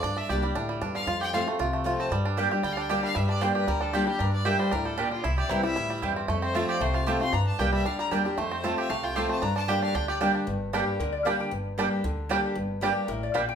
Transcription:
<<
  \new Staff \with { instrumentName = "Fiddle" } { \time 4/4 \key g \dorian \tempo 4 = 230 d''8 e''8 d''8 r2 f''8~ | f''8 g''8 f''8 r2 a''8 | r2 \tuplet 3/2 { g''8 f''8 g''8 } a''8 f''8 | e''8 d''8 c''8 b'8 bes'8 a'8 f'8 g'8 |
bes'8 d''8 e''8 c''8 bes'8 a'8 g'8 f'8 | e''8 d''8 bes'8 e''4. r4 | a'8 c''8 e''8 d''8 c''8 f''8 a''8 c'''8 | bes''8 a''8 g''8 e''8 f''8 bes''8 r4 |
c''4. e''8 f''8 g''8 f''8 a''8 | bes''8 a''8 g''8 f''8 g''8 d''8 r4 | r1 | r1 |
r1 | }
  \new Staff \with { instrumentName = "Resonator guitar played with a steel bar" } { \time 4/4 \key g \dorian r1 | r1 | r1 | r1 |
r1 | r1 | r1 | r1 |
r1 | r1 | r4 g'4 bes'8 d''8 f''8 g''8 | r1 |
r4 g'4 bes'8 d''8 f''8 g''8 | }
  \new Staff \with { instrumentName = "Mandolin" } { \time 4/4 \key g \dorian r1 | r1 | r4 <bes g' d'' g''>8 r4. <bes g' d'' g''>8 r8 | r4 <bes g' d'' g''>8 r4. <bes g' d'' g''>8 r8 |
r4 <bes g' d'' g''>8 r4. <bes g' d'' g''>8 r8 | r4 <c' e' c'' g''>8 r4. <c' e' c'' g''>8 r8 | r4 <c' f' c'' a''>8 r4. <c' f' c'' a''>8 r8 | r4 <bes g' d'' g''>8 r4. <bes g' d'' g''>8 r8 |
r4 <c' f' c'' a''>8 r4. <c' f' c'' a''>8 r8 | r4 <bes g' d'' g''>8 r4. <bes g' d'' g''>8 r8 | r4 <bes g' d'' g''>8 r4. <bes g' d'' g''>8 r8 | r4 <bes g' d'' g''>8 r4. <bes g' d'' g''>8 r8 |
r4 <bes g' d'' g''>8 r4. <bes g' d'' g''>8 r8 | }
  \new Staff \with { instrumentName = "Five-string banjo" } { \time 4/4 \key g \dorian d'8 d'8 g'8 g8 d'8 g8 d'8 d8 | f'8 g'8 f'8 a8 f'8 a8 f'8 c'8 | g8 d'8 d'8 g'8 g8 d'8 g'8 g8 | g8 d'8 d'8 g'8 g8 d'8 g'8 g8 |
d'4 g'8 g8 d'8 g8 d'8 d8 | e'8 g'8 e'8 g8 e'8 g8 e'8 c'8 | a8 c'8 f'8 g'8 a8 f'8 g'8 a8 | d'4 g'8 g8 d'8 g8 d'8 d8 |
a8 c'8 f'8 g'8 a8 f'8 g'8 a8 | d'8 d'8 g'8 d'8 d'8 g'8 d'8 d'8 | r4 <g d'>8 r4. <g d'>8 r8 | r4 <g d'>8 r4. <g d'>8 r8 |
r4 <g d'>8 r4. <g d'>8 r8 | }
  \new Staff \with { instrumentName = "Steel-string acoustic guitar" } { \time 4/4 \key g \dorian << { r4 <g bes d' g'>8 <d' g'>8 r2 | r4 <f a c' f'>8 <c' f'>8 r4 <f a c' f'>4 | r4 <g bes d' g'>8 <d' g'>8 r4 <g bes d' g'>4 | r4 <g bes d' g'>4 r4 <g bes d' g'>8 <d' g'>8 |
r4 <g bes d' g'>4 r2 | r4 <e g c' e'>8 <c' e'>8 r2 | r4 <f a c' f'>4 r4 <f a c' f'>8 <c' f'>8 | r4 <g bes d' g'>4 r4 <g bes d' g'>8 <d' g'>8 |
r4 <f a c' f'>4 r4 <f a c' f'>4 | r4 <g bes d' g'>4 r4 <g bes d' g'>4 | r4 <g bes d' g'>4 r4 <g bes d' g'>4 | r4 <g bes d' g'>4 r4 <g bes d' g'>4 |
r4 <g bes d' g'>4 r2 | } \\ { g,2 a,4 g,4 | f,2 c2 | g,2 d2 | g,2 d2 |
g,2 a,4 bes,4 | c2 a,4 g,4 | f,2 c2 | g,2 d2 |
f,2 c2 | g,2 d2 | g,2 d2 | g,2 d2 |
g,2 a,4 bes,4 | } >> }
  \new Staff \with { instrumentName = "Upright bass" } { \clef bass \time 4/4 \key g \dorian g,4 c,4 d,4 e,4 | f,2 c,2 | g,2 d,2 | g,2 d,2 |
g,2 d,2 | c,4 c,4 d,4 e,4 | f,2 c,2 | g,4 c,4 r4 e,4 |
f,2 c,2 | g,2 d,2 | g,,2 d,2 | g,,2 d,2 |
g,,2 a,,4 bes,,4 | }
>>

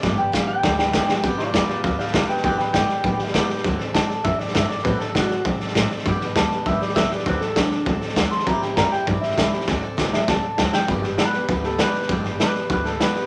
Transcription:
<<
  \new Staff \with { instrumentName = "Clean electric guitar" } { \time 4/4 \key g \major \tempo 4 = 199 r8 g''8 f''8 g''4 g''4. | r8 <f' d''>8 <f' d''>8 <f' d''>8 <d'' f''>8 <d'' f''>8 <d'' f''>8 <b' g''>8 | <b' g''>8 <b' g''>8 g''2 r4 | r4 a''4 e''8 d''8 e''8 d''8 |
b'8 a'8 fis'4 r2 | r4 a''4 e''8 d''8 e''8 d''8 | b'8 a'8 d'4 r4. c'''8 | bes''8 g''8 bes''8 g''8 d''8 e''4 r8 |
r4. e''8 a''4. g''8 | r4 b'4 b'8 a'8 b'4 | r4 b'4 b'8 a'8 b'4 | }
  \new Staff \with { instrumentName = "Steel-string acoustic guitar" } { \time 4/4 \key g \major <g, d g b d' g'>8 <g b d' g'>8 <g, d g b d' g'>8 <g b d' g'>8 <g b d' g'>8 <g b d' g'>8 <g, d g b d' g'>8 <g b d' g'>8 | <g, d g b d' g'>8 <g b d' g'>8 <g, d g b d' g'>8 <g b d' g'>8 <g b d' g'>8 <g b d' g'>8 <g, d g b d' g'>8 <g b d' g'>8 | <g, d g b d' g'>8 <g b d' g'>8 <g, d g b d' g'>8 <g b d' g'>8 <g b d' g'>8 <g b d' g'>8 <g, d g b d' g'>8 <g b d' g'>8 | <d fis c' d' a'>8 <c' d' a'>8 <d fis c' d' a'>8 <c' d' a'>8 <fis c' d' a'>8 <c' d' a'>8 <d fis c' d' a'>8 <c' d' a'>8 |
<d fis c' d' a'>8 <c' d' a'>8 <d fis c' d' a'>8 <c' d' a'>8 <fis c' d' a'>8 <c' d' a'>8 <d fis c' d' a'>8 <c' d' a'>8 | <g, d g b d' g'>8 <g b d' g'>8 <g, d g b d' g'>8 <g b d' g'>8 <g b d' g'>8 <g b d' g'>8 <g, d g b d' g'>8 <g b d' g'>8 | <d fis c' d' a'>8 <c' d' a'>8 <d fis c' d' a'>8 <c' d' a'>8 <fis c' d' a'>8 <c' d' a'>8 <d fis c' d' a'>8 <c' d' a'>8 | <c g c' e' g'>8 <c' e' g'>8 <c g c' e' g'>8 <c' e' g'>8 <g c' e' g'>8 <c' e' g'>8 <c g c' e' g'>8 <c' e' g'>8 |
<d fis c' d' a'>8 <c' d' a'>8 <d fis c' d' a'>8 <c' d' a'>8 <fis c' d' a'>8 <c' d' a'>8 <d fis c' d' a'>8 <c' d' a'>8 | <g, d g b d' g'>8 <g b d' g'>8 <g, d g b d' g'>8 <g b d' g'>8 <g b d' g'>8 <g b d' g'>8 <g, d g b d' g'>8 <g b d' g'>8 | <g, d g b d' g'>8 <g b d' g'>8 <g, d g b d' g'>8 <g b d' g'>8 <g b d' g'>8 <g b d' g'>8 <g, d g b d' g'>8 <g b d' g'>8 | }
  \new Staff \with { instrumentName = "Upright bass" } { \clef bass \time 4/4 \key g \major g,,4. r8 d,4. r8 | g,8 r8 e,8 r8 d,8 r8 c,8 r8 | b,,8 r8 g,,8 r8 a,,8 r8 b,,8 r8 | d,8 r4. fis,8 r8 g,8 r8 |
a,8 r8 b,8 r8 c8 r8 a,8 r8 | g,8 r8 d,8 r8 b,,8 r8 c,8 r8 | d,8 r8 b,,8 r8 c,8 r8 d,8 r8 | e,8 r8 fis,8 r8 g,8 r8 c,8 r8 |
d,8 r8 b,,8 r8 c,8 r8 d,8 r8 | g,,4. r8 d,4. r8 | g,,4. r8 d,4. r8 | }
  \new DrumStaff \with { instrumentName = "Drums" } \drummode { \time 4/4 <bd sn>4 <hhp bd sn>4 <bd sn>8 sn8 <hhp bd sn>8 sn8 | <bd sn>8 sn8 <hhp bd sn>8 sn8 <bd sn>8 sn16 sn16 <hhp bd sn>8 sn16 sn16 | <bd sn>8 sn8 <hhp bd sn>8 sn8 <bd sn>8 sn16 sn16 <hhp bd sn>8 sn16 sn16 | <bd sn>8 sn8 <hhp bd sn>8 sn8 <bd sn>8 sn16 sn16 <hhp bd sn>8 sn16 sn16 |
<bd sn>8 sn8 <hhp bd sn>8 sn8 <bd sn>8 sn16 sn16 <hhp bd sn>8 sn16 sn16 | <bd sn>8 sn8 <hhp bd sn>8 sn8 <bd sn>8 sn16 sn16 <hhp bd sn>8 sn16 sn16 | <bd sn>8 sn8 <hhp bd sn>8 sn8 <bd sn>8 sn16 sn16 <hhp bd sn>8 sn16 sn16 | <bd sn>8 sn8 <hhp bd sn>8 sn8 <bd sn>8 sn16 sn16 <hhp bd sn>8 sn16 sn16 |
<bd sn>4 <hhp bd sn>8 sn8 <bd sn>4 <hhp bd sn>8 sn8 | <bd sn>8 sn8 <hhp sn>8 sn8 <bd sn>8 sn8 <hhp sn>8 sn16 sn16 | <bd sn>8 sn8 <hhp sn>8 sn8 <bd sn>8 sn8 <hhp sn>8 sn8 | }
>>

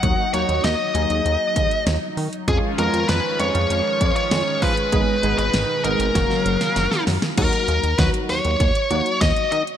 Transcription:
<<
  \new Staff \with { instrumentName = "Lead electric guitar" } { \time 4/4 \key dis \minor \tempo 4 = 98 fis''8 cis''8 dis''2 r4 | gis'8 ais'8 b'8 cis''4~ cis''16 cis''8. b'8~ | b'8. b'8. ais'2 r8 | ais'4 b'8 cis''4. dis''8 dis''8 | }
  \new Staff \with { instrumentName = "Analog polysynth" } { \time 4/4 \key dis \minor <fis ais dis' fis'>8 <fis ais dis' fis'>8. r16 <fis ais dis' gis'>4. r4 | <gis cis' eis' gis'>8 <gis b cis' eis'>8. r16 <gis cis' eis' b'>4. r4 | <gis b dis' gis'>8 <gis b dis' gis'>8. r16 <gis b dis' gis'>8 <fis ais cis' fis'>4. r8 | <fis ais dis' fis'>8. r16 <fis dis' fis'>4 r8 <fis ais dis' fis'>4 r8 | }
  \new Staff \with { instrumentName = "Analog synth pad" } { \clef bass \time 4/4 \key dis \minor << { dis'1 | <dis eis cis' eis'>1 | <b, dis dis'>2 <cis eis''>2 | r1 | } \\ { fis1 | gis1~ | gis2 fis2 | r1 | } >> }
  \new Staff \with { instrumentName = "Analog synth bass" } { \clef bass \time 4/4 \key dis \minor dis,16 r16 dis,16 dis,16 dis,16 r16 dis,16 dis,16 dis,16 r16 dis,16 r16 dis,16 r16 dis16 r16 | eis,16 r16 eis,16 eis,16 eis,16 r16 eis,16 eis,16 eis,16 r16 eis,16 r16 eis,16 r16 eis16 r16 | gis,,16 r16 gis,,16 gis,,16 gis,,16 r16 gis,,16 gis,,16 fis,,16 r16 fis,,16 r16 fis,,16 r16 fis,16 r16 | dis,16 r16 dis,16 dis,16 dis,16 r16 dis,16 dis,16 dis,16 r16 dis,16 r16 dis,16 r16 dis16 r16 | }
  \new DrumStaff \with { instrumentName = "Drums" } \drummode { \time 4/4 <hh bd>8 hh16 hh16 <hh sn>8 hh16 hh16 hh8 <hh bd>16 hh16 <hh sn>8 hho16 hh16 | <hh bd>8 hh16 hh16 <hh sn>8 hh16 hh16 hh8 <hh bd>16 hh16 <hh sn>8 <hho bd>16 hh16 | <hh bd>8 hh16 hh16 <hh sn>8 hh16 hh16 <hh bd sn>16 sn16 hh16 <hh sn>16 <hh sn>16 sn16 <hho sn>16 <hh sn>16 | <cymc hh bd>16 hh16 hh16 hh16 <hh bd sn>16 hh16 hho16 hh16 <hh bd>16 hh16 hh16 hh16 <hh bd sn>16 hh16 hh16 hh16 | }
>>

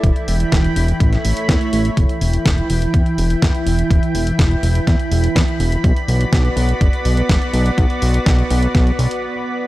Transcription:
<<
  \new Staff \with { instrumentName = "Analog synth pad" } { \time 4/4 \key e \dorian \tempo 4 = 124 << { b''2 b''2 | b''1~ | b''1~ | b''1~ |
b''1 | } \\ { <e e' g''>2 <a e' cis''>2 | <e e' g''>1~ | <e e' g''>1 | <b fis' d''>1~ |
<b fis' d''>1 | } >> }
  \new Staff \with { instrumentName = "Analog synth bass" } { \clef bass \time 4/4 \key e \dorian e,,8 e,,8 e,,8 e,,8 a,,8 a,,8 e,8 a,,8 | e,,8 e,,8 e,,8 e,,8 e,8 e,,8 e,8 e,,8 | e,,8 e,,8 e,,8 e,,8 e,8 e,,8 e,8 e,,8 | b,,8 b,,8 b,,8 b,,8 fis,,8 b,,8 fis,,8 b,,8 |
b,,8 b,,8 b,,8 b,,8 b,,8 b,,8 r4 | }
  \new DrumStaff \with { instrumentName = "Drums" } \drummode { \time 4/4 <hh bd>16 hh16 hho16 hh16 <hh bd sn>16 hh16 hho16 hh16 <hh bd>16 <hh sn>16 hho16 hh16 <hh bd sn>16 hh16 hho16 hh16 | <hh bd>16 hh16 hho16 hh16 <hh bd sn>16 hh16 hho16 hh16 <hh bd>16 hh16 hho16 hh16 <hh bd sn>16 hh16 hho16 hh16 | <hh bd>16 hh16 hho16 hh16 <hh bd sn>16 hh16 hho16 hh16 <hh bd sn>16 hh16 hho16 hh16 <hh bd sn>16 hh16 hho16 hh16 | <hh bd>16 hh16 hho16 hh16 <hh bd sn>16 hh16 hho16 hh16 <hh bd>16 hh16 hho16 hh16 <hh bd sn>16 hh16 hho16 hh16 |
<hh bd>16 hh16 hho16 hh16 <hh bd sn>16 hh16 hho16 hh16 <hh bd sn>16 hh16 hho16 hh16 r4 | }
>>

